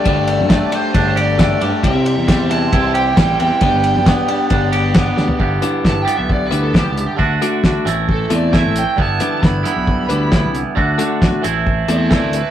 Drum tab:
RD |x-x-x-x-x-x-x-x-|x-x-x-x-x-x-x-x-|x-x-x-x-x-x-x---|----------------|
HH |----------------|----------------|----------------|--x---x---x---x-|
SD |----o-------o---|----o-------o---|----o-------o-o-|----o-------o---|
FT |----------------|----------------|---------------o|----------------|
BD |o---o---o---o---|o---o---o---o---|o---o---o---o---|o---o---o---o---|

RD |----------------|----------------|----------------|
HH |--x---x---x---x-|--x---x---x---x-|--x---x---x---x-|
SD |----o-o-----o---|----o-o-----o---|----o-------o---|
FT |----------------|----------------|----------------|
BD |o---o---o---o---|o---o---o---o---|o---o---o---o---|